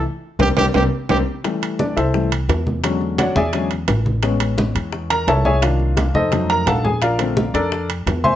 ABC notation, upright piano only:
X:1
M:4/4
L:1/8
Q:1/4=172
K:Cmix
V:1 name="Upright piano"
z2 [G,B,C] [G,B,C] [G,B,C] z [G,B,C] z | z2 [Dd] [EAce]2 z3 | z2 [^F^cd^f] [^Gde^g]2 z3 | z4 z [Bb] [A^cea] [^Gce^g] |
[Ff]3 [_EAc_e]2 [Bb] [Af_ga] [_A_a] | [FBdf]3 [DABd]2 z2 [ce_ac'] |]
V:2 name="Upright piano" clef=bass
z8 | [E,G,A,]3 z [E,G,A,] z3 | [D,^F,^G,^C]3 z [D,F,G,C] z3 | [^G,=B,^C]8 |
[_E,B,D]3 z [_G,A,_E]3 z | z [D,A,C] z6 |]